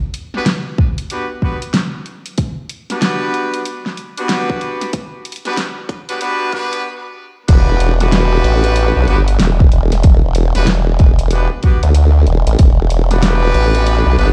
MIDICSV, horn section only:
0, 0, Header, 1, 2, 480
1, 0, Start_track
1, 0, Key_signature, 1, "minor"
1, 0, Tempo, 638298
1, 1788, Time_signature, 4, 2, 24, 8
1, 10775, End_track
2, 0, Start_track
2, 0, Title_t, "Horn section"
2, 0, Program_c, 0, 61
2, 262, Note_on_c, 0, 59, 95
2, 262, Note_on_c, 0, 62, 94
2, 262, Note_on_c, 0, 66, 85
2, 262, Note_on_c, 0, 67, 86
2, 262, Note_on_c, 0, 71, 103
2, 331, Note_off_c, 0, 59, 0
2, 331, Note_off_c, 0, 62, 0
2, 331, Note_off_c, 0, 66, 0
2, 331, Note_off_c, 0, 67, 0
2, 331, Note_off_c, 0, 71, 0
2, 833, Note_on_c, 0, 59, 80
2, 833, Note_on_c, 0, 62, 77
2, 833, Note_on_c, 0, 67, 71
2, 833, Note_on_c, 0, 71, 86
2, 834, Note_on_c, 0, 66, 71
2, 950, Note_off_c, 0, 59, 0
2, 950, Note_off_c, 0, 62, 0
2, 950, Note_off_c, 0, 67, 0
2, 950, Note_off_c, 0, 71, 0
2, 951, Note_off_c, 0, 66, 0
2, 1071, Note_on_c, 0, 62, 80
2, 1072, Note_on_c, 0, 66, 74
2, 1072, Note_on_c, 0, 67, 76
2, 1073, Note_on_c, 0, 59, 81
2, 1073, Note_on_c, 0, 71, 89
2, 1189, Note_off_c, 0, 62, 0
2, 1190, Note_off_c, 0, 59, 0
2, 1190, Note_off_c, 0, 66, 0
2, 1190, Note_off_c, 0, 67, 0
2, 1190, Note_off_c, 0, 71, 0
2, 2182, Note_on_c, 0, 62, 92
2, 2182, Note_on_c, 0, 66, 87
2, 2182, Note_on_c, 0, 67, 86
2, 2183, Note_on_c, 0, 59, 95
2, 2183, Note_on_c, 0, 71, 103
2, 2735, Note_off_c, 0, 62, 0
2, 2735, Note_off_c, 0, 66, 0
2, 2736, Note_off_c, 0, 59, 0
2, 2736, Note_off_c, 0, 67, 0
2, 2736, Note_off_c, 0, 71, 0
2, 3143, Note_on_c, 0, 59, 95
2, 3143, Note_on_c, 0, 67, 85
2, 3143, Note_on_c, 0, 71, 103
2, 3144, Note_on_c, 0, 62, 95
2, 3144, Note_on_c, 0, 66, 90
2, 3696, Note_off_c, 0, 59, 0
2, 3696, Note_off_c, 0, 62, 0
2, 3696, Note_off_c, 0, 66, 0
2, 3696, Note_off_c, 0, 67, 0
2, 3696, Note_off_c, 0, 71, 0
2, 4103, Note_on_c, 0, 59, 98
2, 4103, Note_on_c, 0, 71, 106
2, 4104, Note_on_c, 0, 66, 88
2, 4104, Note_on_c, 0, 67, 85
2, 4105, Note_on_c, 0, 62, 96
2, 4176, Note_off_c, 0, 59, 0
2, 4176, Note_off_c, 0, 67, 0
2, 4176, Note_off_c, 0, 71, 0
2, 4177, Note_off_c, 0, 62, 0
2, 4177, Note_off_c, 0, 66, 0
2, 4582, Note_on_c, 0, 67, 89
2, 4583, Note_on_c, 0, 59, 99
2, 4583, Note_on_c, 0, 62, 96
2, 4583, Note_on_c, 0, 66, 89
2, 4583, Note_on_c, 0, 71, 107
2, 4655, Note_off_c, 0, 67, 0
2, 4656, Note_off_c, 0, 59, 0
2, 4656, Note_off_c, 0, 62, 0
2, 4656, Note_off_c, 0, 66, 0
2, 4656, Note_off_c, 0, 71, 0
2, 4670, Note_on_c, 0, 59, 101
2, 4670, Note_on_c, 0, 71, 110
2, 4671, Note_on_c, 0, 62, 97
2, 4671, Note_on_c, 0, 66, 90
2, 4671, Note_on_c, 0, 67, 88
2, 4895, Note_off_c, 0, 59, 0
2, 4895, Note_off_c, 0, 66, 0
2, 4895, Note_off_c, 0, 71, 0
2, 4896, Note_off_c, 0, 62, 0
2, 4896, Note_off_c, 0, 67, 0
2, 4912, Note_on_c, 0, 62, 100
2, 4912, Note_on_c, 0, 66, 89
2, 4912, Note_on_c, 0, 67, 91
2, 4913, Note_on_c, 0, 59, 99
2, 4913, Note_on_c, 0, 71, 107
2, 5136, Note_off_c, 0, 59, 0
2, 5136, Note_off_c, 0, 62, 0
2, 5136, Note_off_c, 0, 66, 0
2, 5136, Note_off_c, 0, 67, 0
2, 5136, Note_off_c, 0, 71, 0
2, 5631, Note_on_c, 0, 59, 105
2, 5631, Note_on_c, 0, 66, 95
2, 5631, Note_on_c, 0, 67, 98
2, 5631, Note_on_c, 0, 71, 114
2, 5632, Note_on_c, 0, 62, 107
2, 5960, Note_off_c, 0, 66, 0
2, 5960, Note_off_c, 0, 67, 0
2, 5961, Note_off_c, 0, 59, 0
2, 5961, Note_off_c, 0, 62, 0
2, 5961, Note_off_c, 0, 71, 0
2, 6022, Note_on_c, 0, 59, 106
2, 6022, Note_on_c, 0, 62, 108
2, 6022, Note_on_c, 0, 66, 94
2, 6022, Note_on_c, 0, 67, 98
2, 6022, Note_on_c, 0, 71, 115
2, 6808, Note_off_c, 0, 59, 0
2, 6808, Note_off_c, 0, 62, 0
2, 6808, Note_off_c, 0, 66, 0
2, 6808, Note_off_c, 0, 71, 0
2, 6809, Note_off_c, 0, 67, 0
2, 6831, Note_on_c, 0, 59, 96
2, 6831, Note_on_c, 0, 71, 105
2, 6832, Note_on_c, 0, 62, 97
2, 6832, Note_on_c, 0, 66, 90
2, 6832, Note_on_c, 0, 67, 89
2, 6905, Note_off_c, 0, 59, 0
2, 6905, Note_off_c, 0, 62, 0
2, 6905, Note_off_c, 0, 66, 0
2, 6905, Note_off_c, 0, 67, 0
2, 6905, Note_off_c, 0, 71, 0
2, 7942, Note_on_c, 0, 59, 96
2, 7942, Note_on_c, 0, 66, 89
2, 7942, Note_on_c, 0, 67, 90
2, 7942, Note_on_c, 0, 71, 105
2, 7943, Note_on_c, 0, 62, 98
2, 8011, Note_off_c, 0, 59, 0
2, 8011, Note_off_c, 0, 62, 0
2, 8011, Note_off_c, 0, 66, 0
2, 8011, Note_off_c, 0, 67, 0
2, 8011, Note_off_c, 0, 71, 0
2, 8510, Note_on_c, 0, 67, 73
2, 8511, Note_on_c, 0, 59, 81
2, 8511, Note_on_c, 0, 62, 81
2, 8511, Note_on_c, 0, 66, 75
2, 8511, Note_on_c, 0, 71, 88
2, 8629, Note_off_c, 0, 59, 0
2, 8629, Note_off_c, 0, 62, 0
2, 8629, Note_off_c, 0, 66, 0
2, 8629, Note_off_c, 0, 67, 0
2, 8629, Note_off_c, 0, 71, 0
2, 8752, Note_on_c, 0, 59, 86
2, 8752, Note_on_c, 0, 62, 86
2, 8752, Note_on_c, 0, 66, 76
2, 8752, Note_on_c, 0, 67, 76
2, 8752, Note_on_c, 0, 71, 94
2, 8870, Note_off_c, 0, 59, 0
2, 8870, Note_off_c, 0, 62, 0
2, 8870, Note_off_c, 0, 66, 0
2, 8870, Note_off_c, 0, 67, 0
2, 8870, Note_off_c, 0, 71, 0
2, 9861, Note_on_c, 0, 62, 106
2, 9862, Note_on_c, 0, 59, 109
2, 9862, Note_on_c, 0, 66, 98
2, 9862, Note_on_c, 0, 67, 97
2, 9862, Note_on_c, 0, 71, 119
2, 10648, Note_off_c, 0, 59, 0
2, 10648, Note_off_c, 0, 62, 0
2, 10648, Note_off_c, 0, 66, 0
2, 10648, Note_off_c, 0, 67, 0
2, 10648, Note_off_c, 0, 71, 0
2, 10668, Note_on_c, 0, 59, 102
2, 10668, Note_on_c, 0, 71, 110
2, 10669, Note_on_c, 0, 62, 99
2, 10669, Note_on_c, 0, 67, 88
2, 10670, Note_on_c, 0, 66, 88
2, 10743, Note_off_c, 0, 59, 0
2, 10743, Note_off_c, 0, 62, 0
2, 10743, Note_off_c, 0, 67, 0
2, 10743, Note_off_c, 0, 71, 0
2, 10744, Note_off_c, 0, 66, 0
2, 10775, End_track
0, 0, End_of_file